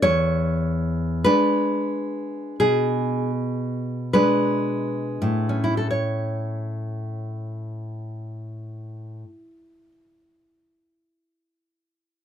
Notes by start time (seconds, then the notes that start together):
0.02 E2 C#5
1.24 G#3 D4 B4
2.60 B2 G#4
4.13 G#3 D4 B4
5.22 A2
5.49 C#4
5.64 E4
5.77 A4
5.91 C#5